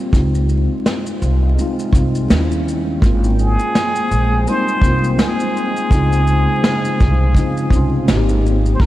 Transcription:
0.00 0.10 G3 medium
0.00 0.15 G3 medium
0.00 0.15 A#3 medium
0.00 0.13 C4 medium
0.00 2.26 C4 medium
0.00 0.15 F4 medium
0.11 0.66 C#2 loud
0.11 2.28 C3 medium
0.11 1.12 G#3 medium
0.11 2.28 G#3 medium
0.11 1.13 C4 medium
0.11 1.14 D#4 medium
0.11 2.28 F4 medium
0.11 kick loud
0.11 closed hi-hat medium
0.11 shaker medium
0.17 1.15 F4 medium
0.35 shaker soft
0.49 shaker soft
0.86 snare loud
0.86 closed hi-hat medium
0.86 shaker medium
1.06 shaker medium
1.22 1.55 C2 loud
1.22 shaker soft
1.56 1.83 G#3 medium
1.56 1.84 C4 medium
1.56 1.85 D#4 medium
1.56 closed hi-hat medium
1.56 shaker medium
1.61 1.86 F4 medium
1.79 shaker soft
1.92 2.27 C2 medium
1.92 2.29 G#3 medium
1.92 2.30 C4 medium
1.92 2.31 D#4 medium
1.92 kick medium
1.92 shaker medium
1.98 2.32 F4 medium
2.15 shaker soft
2.28 2.98 D#2 loud
2.28 2.89 G3 medium
2.28 2.90 A#3 medium
2.28 2.90 C#4 medium
2.28 5.88 G5 medium
2.28 snare loud
2.28 closed hi-hat medium
2.28 shaker medium
2.34 2.39 D#4 medium
2.40 2.95 E4 medium
2.52 shaker soft
2.68 shaker soft
3.00 3.55 G#1 loud
3.00 4.01 G#3 medium
3.00 8.77 G#3 medium
3.00 4.02 A#3 medium
3.00 4.03 C4 medium
3.00 8.77 C5 medium
3.00 kick loud
3.00 closed hi-hat medium
3.00 shaker medium
3.06 4.04 F4 loud
3.24 shaker medium
3.39 4.50 G#4 loud
3.39 shaker soft
3.59 shaker medium
3.75 snare loud
3.75 closed hi-hat medium
3.75 shaker medium
3.96 shaker medium
4.11 4.45 A#1 loud
4.11 shaker soft
4.45 4.72 G3 medium
4.45 4.73 A#3 medium
4.45 4.74 C4 medium
4.45 5.20 C5 loud
4.45 closed hi-hat medium
4.45 shaker medium
4.51 4.75 D#4 loud
4.68 shaker soft
4.81 5.16 C2 medium
4.81 5.56 G#3 medium
4.81 5.57 A#3 medium
4.81 5.58 C4 medium
4.81 kick medium
4.81 shaker medium
4.86 5.59 F4 medium
5.04 shaker soft
5.19 8.05 G#4 medium
5.19 snare loud
5.19 closed hi-hat medium
5.19 shaker medium
5.40 shaker soft
5.57 shaker soft
5.76 shaker soft
5.89 6.44 C#2 loud
5.89 6.90 C#3 medium
5.89 8.06 F3 medium
5.89 6.91 G#3 medium
5.89 6.92 C4 medium
5.89 8.06 F4 medium
5.89 kick loud
5.89 closed hi-hat medium
5.89 shaker medium
5.94 6.92 D#4 medium
5.94 6.93 F4 medium
6.13 shaker medium
6.27 shaker soft
6.64 snare loud
6.64 closed hi-hat medium
6.64 shaker medium
6.85 shaker medium
7.00 7.34 C2 loud
7.00 kick medium
7.00 shaker soft
7.33 7.61 C#3 medium
7.33 7.61 G#3 medium
7.33 7.62 C4 medium
7.33 kick medium
7.33 closed hi-hat medium
7.33 shaker medium
7.38 7.63 D#4 medium
7.38 7.64 F4 medium
7.57 shaker medium
7.70 8.10 C2 medium
7.70 8.08 G#3 medium
7.70 8.07 C4 medium
7.70 8.07 C#4 medium
7.70 kick medium
7.70 shaker medium
7.75 8.09 D#4 medium
7.75 8.10 F4 loud
8.05 8.77 G#1 loud
8.05 8.66 G#2 medium
8.05 8.67 A#3 medium
8.05 8.68 C4 medium
8.05 snare loud
8.05 closed hi-hat medium
8.05 shaker medium
8.10 8.69 D#4 medium
8.10 8.17 F#4 medium
8.17 8.72 G4 loud
8.29 shaker medium
8.46 shaker soft
8.66 shaker soft
8.75 8.86 G#3 medium
8.75 8.82 C5 medium
8.79 8.86 G#1 loud
8.79 8.86 A#3 medium
8.79 8.86 C4 medium
8.79 8.86 F4 medium
8.79 8.86 A#4 medium
8.79 kick loud

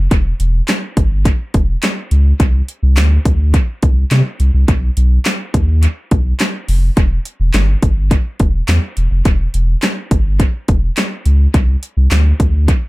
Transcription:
0.11 0.33 E1 loud
0.11 kick loud
0.11 closed hi-hat medium
0.40 0.62 E1 loud
0.40 closed hi-hat medium
0.68 snare loud
0.68 clap loud
0.68 closed hi-hat loud
0.97 1.30 G1 medium
0.97 kick medium
0.97 closed hi-hat medium
1.25 kick loud
1.25 closed hi-hat medium
1.54 1.76 E1 medium
1.54 kick loud
1.54 closed hi-hat medium
1.83 snare medium
1.83 clap loud
1.83 closed hi-hat loud
2.11 2.33 C#2 medium
2.11 closed hi-hat medium
2.40 2.62 C2 loud
2.40 kick loud
2.40 closed hi-hat medium
2.68 closed hi-hat medium
2.83 2.99 C2 loud
2.97 3.19 D2 medium
2.97 snare loud
2.97 clap loud
2.97 closed hi-hat loud
3.25 3.58 D2 medium
3.25 kick medium
3.25 closed hi-hat medium
3.54 kick loud
3.54 closed hi-hat loud
3.82 4.05 C2 medium
3.82 kick loud
3.82 closed hi-hat medium
4.11 4.22 C3 loud
4.11 snare medium
4.11 clap loud
4.11 closed hi-hat loud
4.40 4.51 C2 medium
4.40 closed hi-hat medium
4.54 4.65 C2 medium
4.68 4.90 B1 loud
4.68 kick loud
4.68 closed hi-hat medium
4.97 5.19 B1 loud
4.97 closed hi-hat medium
5.25 snare loud
5.25 clap loud
5.25 closed hi-hat loud
5.54 5.87 D#2 medium
5.54 kick medium
5.54 closed hi-hat medium
5.83 closed hi-hat medium
6.11 6.33 B1 medium
6.11 kick loud
6.11 closed hi-hat medium
6.40 snare medium
6.40 clap loud
6.40 closed hi-hat loud
6.68 6.90 F1 medium
6.68 open hi-hat medium
6.97 7.19 E1 loud
6.97 kick loud
6.97 closed hi-hat medium
7.25 closed hi-hat medium
7.40 7.51 E1 loud
7.54 7.76 G1 medium
7.54 snare loud
7.54 clap loud
7.54 closed hi-hat loud
7.83 8.16 G1 medium
7.83 kick loud
7.83 closed hi-hat medium
8.11 kick loud
8.11 closed hi-hat medium
8.40 8.62 E1 medium
8.40 kick loud
8.40 closed hi-hat medium
8.68 8.79 E2 loud
8.68 snare loud
8.68 clap loud
8.68 closed hi-hat loud
8.97 9.08 E1 medium
8.97 closed hi-hat medium
9.11 9.22 F1 medium
9.25 9.47 E1 loud
9.25 kick loud
9.25 closed hi-hat medium
9.54 9.76 E1 loud
9.54 closed hi-hat medium
9.82 snare loud
9.82 clap loud
9.82 closed hi-hat loud
10.11 10.44 G1 medium
10.11 kick loud
10.11 closed hi-hat medium
10.40 kick loud
10.40 closed hi-hat loud
10.68 10.90 E1 medium
10.68 kick loud
10.68 closed hi-hat medium
10.97 snare loud
10.97 clap loud
10.97 closed hi-hat loud
11.26 11.48 C#2 medium
11.26 closed hi-hat medium
11.54 11.76 C2 loud
11.54 kick loud
11.54 closed hi-hat loud
11.83 closed hi-hat medium
11.97 12.08 C2 loud
12.11 12.33 D2 loud
12.11 snare loud
12.11 clap loud
12.11 closed hi-hat medium
12.40 12.73 D2 medium
12.40 kick loud
12.40 closed hi-hat medium
12.68 kick loud
12.68 closed hi-hat loud

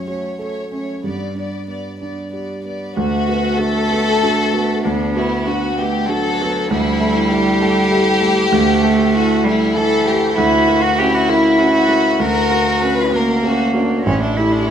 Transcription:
0.00 1.00 F#2 medium
0.00 0.27 C#4 soft
0.00 0.08 F#4 soft
0.06 0.38 A3 soft
0.06 0.58 F#4 soft
0.06 0.39 C#5 soft
0.39 0.71 A3 soft
0.39 0.91 A4 soft
0.39 0.72 C#5 medium
0.71 1.03 A3 soft
0.71 1.04 C#4 soft
0.71 1.04 C#5 soft
1.04 2.92 G2 soft
1.04 1.35 B3 soft
1.04 1.36 D5 soft
1.35 1.67 B3 soft
1.35 1.87 D4 soft
1.35 1.68 D5 soft
1.67 1.99 B3 soft
1.67 2.19 B3 soft
1.67 1.98 D5 soft
1.99 2.31 B3 soft
1.99 2.52 D4 soft
1.99 2.31 D5 soft
2.32 2.64 B3 soft
2.32 2.84 G4 soft
2.32 2.64 D5 soft
2.65 2.96 B3 soft
2.65 2.97 B3 soft
2.65 2.96 D5 soft
2.97 4.79 D2 medium
2.97 4.86 A3 loud
2.97 3.55 F#4 medium
3.28 3.56 B3 medium
3.28 3.56 F#4 medium
3.58 3.87 D4 medium
3.58 3.87 F#4 medium
3.58 4.83 A4 loud
3.91 4.18 B3 medium
3.91 4.19 F#4 medium
4.23 4.50 D4 medium
4.23 4.50 F#4 medium
4.53 4.81 B3 medium
4.53 4.81 F#4 medium
4.84 6.66 D2 medium
4.84 5.76 B3 loud
4.84 5.14 D4 medium
5.15 5.43 B3 medium
5.15 5.46 E4 medium
5.15 5.43 F#4 medium
5.47 5.74 D4 medium
5.47 5.77 F#4 medium
5.47 5.75 F#4 medium
5.76 6.09 A3 medium
5.76 6.05 B3 medium
5.76 6.08 G4 medium
5.76 6.05 F#5 medium
6.08 6.71 F#3 loud
6.08 6.36 D4 medium
6.08 6.36 F#4 medium
6.08 6.70 A4 medium
6.41 6.67 B3 medium
6.41 6.67 F#4 medium
6.70 8.50 D2 medium
6.70 8.51 G3 loud
6.70 7.30 E4 medium
7.00 7.28 A3 medium
7.00 7.28 A4 medium
7.31 7.58 E4 medium
7.31 9.14 G4 loud
7.31 7.59 A4 medium
7.61 7.89 A3 medium
7.61 7.89 A4 medium
7.91 8.19 E4 medium
7.91 8.19 A4 medium
8.21 8.49 A3 medium
8.21 8.49 A4 medium
8.51 10.32 D2 loud
8.51 9.46 A3 loud
8.83 9.11 A3 medium
8.83 9.11 A4 medium
9.14 9.42 E4 medium
9.14 9.44 F#4 loud
9.14 9.42 A4 medium
9.44 9.77 G3 loud
9.44 9.73 A3 medium
9.44 9.76 E4 medium
9.44 9.73 A4 medium
9.74 10.36 E3 loud
9.74 10.03 E4 medium
9.74 10.05 A4 loud
9.74 10.03 A4 medium
10.05 10.34 A3 medium
10.05 10.36 G4 medium
10.05 10.34 A4 medium
10.35 12.16 D2 loud
10.35 10.84 E4 loud
10.35 10.97 F#4 loud
10.68 10.95 A#3 medium
10.68 10.95 F#4 medium
10.82 11.00 F#4 loud
10.97 11.26 C#4 medium
10.97 11.58 E4 loud
10.97 11.26 F#4 medium
10.97 11.15 G4 loud
11.14 11.30 F#4 loud
11.28 11.56 A#3 medium
11.28 12.22 E4 loud
11.28 11.56 F#4 medium
11.57 11.86 C#4 medium
11.57 12.19 F#4 loud
11.57 11.87 F#4 medium
11.88 12.16 A#3 medium
11.88 12.16 F#4 medium
12.19 14.01 D2 loud
12.19 13.14 F#4 loud
12.19 12.81 A#4 loud
12.50 12.78 A#3 medium
12.50 12.78 F#4 medium
12.81 13.09 C#4 medium
12.81 13.09 F#4 medium
12.81 13.12 B4 loud
13.12 13.40 A#3 medium
13.12 14.04 A#3 loud
13.12 13.40 F#4 medium
13.12 13.43 A#4 medium
13.44 13.71 C#4 medium
13.44 13.71 F#4 medium
13.44 13.74 F#4 medium
13.73 14.01 A#3 medium
13.73 14.05 D4 medium
13.73 14.02 F#4 medium
14.05 14.70 A1 medium
14.05 14.20 C#4 loud
14.05 14.70 E4 medium
14.22 14.38 D4 loud
14.36 14.65 A3 medium
14.36 14.53 E4 medium
14.36 14.66 G4 medium
14.52 14.68 D4 loud
14.66 14.70 C#4 loud

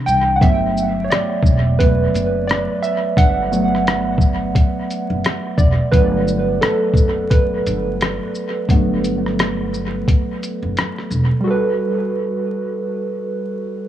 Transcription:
0.06 0.39 C2 medium
0.06 0.36 G5 loud
0.06 shaker soft
0.36 0.41 F#5 medium
0.41 1.06 G1 loud
0.41 0.90 F#3 medium
0.41 0.90 A3 soft
0.41 0.90 B3 medium
0.41 1.06 E5 loud
0.41 kick loud
0.41 closed hi-hat medium
0.77 shaker soft
1.04 1.10 C#5 medium
1.10 1.81 D5 loud
1.10 cross-stick loud
1.10 closed hi-hat medium
1.43 2.09 E1 medium
1.43 kick medium
1.43 shaker soft
1.79 2.10 F#3 soft
1.79 2.11 A3 soft
1.79 2.11 B3 soft
1.79 2.50 B4 medium
1.79 kick medium
1.79 closed hi-hat medium
2.14 2.66 F#1 medium
2.14 closed hi-hat soft
2.14 shaker soft
2.47 2.61 D5 medium
2.47 cross-stick loud
2.47 closed hi-hat medium
2.82 3.18 E5 loud
2.82 shaker soft
3.17 4.51 G1 medium
3.17 5.66 F#5 loud
3.17 kick loud
3.17 closed hi-hat medium
3.52 4.51 F#3 medium
3.52 4.51 A3 medium
3.52 4.51 B3 medium
3.52 shaker soft
3.75 cross-stick soft
3.87 cross-stick loud
3.87 closed hi-hat medium
4.18 kick medium
4.18 shaker soft
4.55 kick medium
4.55 closed hi-hat medium
4.91 closed hi-hat soft
4.91 shaker soft
5.10 5.23 F#1 medium
5.24 cross-stick loud
5.24 closed hi-hat medium
5.58 5.78 E1 medium
5.58 5.93 D5 medium
5.58 kick loud
5.58 shaker soft
5.92 6.58 G1 loud
5.92 6.92 F#3 medium
5.92 6.92 A3 medium
5.92 6.93 B3 medium
5.92 6.57 B4 medium
5.92 kick loud
5.92 closed hi-hat medium
6.28 shaker soft
6.61 7.26 A4 medium
6.61 cross-stick loud
6.61 closed hi-hat medium
6.94 7.60 F#1 medium
6.94 kick medium
6.94 shaker soft
7.30 10.71 B4 medium
7.30 kick medium
7.30 closed hi-hat medium
7.66 8.17 G1 medium
7.66 closed hi-hat soft
7.66 shaker soft
8.01 cross-stick loud
8.01 closed hi-hat medium
8.35 shaker soft
8.69 10.03 G1 loud
8.69 9.17 F#3 medium
8.69 9.18 A3 medium
8.69 9.18 B3 medium
8.69 kick medium
8.69 closed hi-hat medium
9.04 closed hi-hat medium
9.04 shaker soft
9.26 cross-stick soft
9.39 cross-stick loud
9.39 closed hi-hat medium
9.74 shaker soft
10.08 kick medium
10.08 closed hi-hat medium
10.43 closed hi-hat soft
10.43 shaker soft
10.63 10.75 F#1 medium
10.77 cross-stick loud
10.77 closed hi-hat medium
10.98 cross-stick soft
11.11 11.29 E1 medium
11.11 shaker soft
11.41 13.88 G3 medium
11.41 13.88 F#4 medium
11.47 13.88 A4 medium
11.47 13.88 B4 medium

